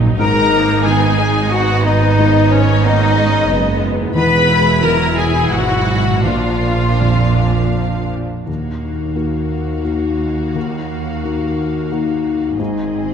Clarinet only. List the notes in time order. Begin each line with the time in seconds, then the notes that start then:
0.19 A#4
0.86 G#4
1.51 F#4
1.85 D#4
2.52 C#4
2.84 D#4
4.18 B4
4.85 A#4
5.18 G#4
5.54 F#4
6.27 F4